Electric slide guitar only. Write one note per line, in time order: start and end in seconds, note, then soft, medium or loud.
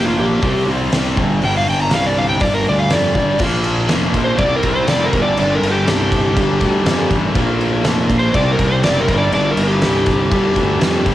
0.08 0.19 F4 medium
0.19 0.67 G4 loud
1.45 1.55 G5 loud
1.57 1.68 F5 loud
1.70 1.80 G5 loud
1.82 1.92 A#5 loud
1.94 2.04 F5 loud
2.06 2.17 D5 medium
2.18 2.29 F5 medium
2.29 2.41 G5 medium
2.41 2.53 D5 medium
2.54 2.66 A#4 medium
2.69 2.79 D5 medium
2.79 2.90 F5 medium
2.93 3.40 D5 loud
4.24 4.39 C5 loud
4.38 4.54 D5 medium
4.56 4.72 A#4 medium
4.71 4.87 C5 loud
4.89 5.05 D5 loud
5.06 5.21 A#4 medium
5.22 5.38 D5 loud
5.39 5.55 D5 loud
5.55 5.71 A#4 loud
5.71 7.15 G4 loud
8.19 8.35 C5 loud
8.35 8.51 D5 medium
8.52 8.67 A#4 loud
8.67 8.83 C5 loud
8.84 9.00 D5 loud
9.01 9.16 A#4 medium
9.18 9.33 D5 medium
9.34 9.50 D5 loud
9.51 9.66 A#4 loud
9.67 11.11 G4 loud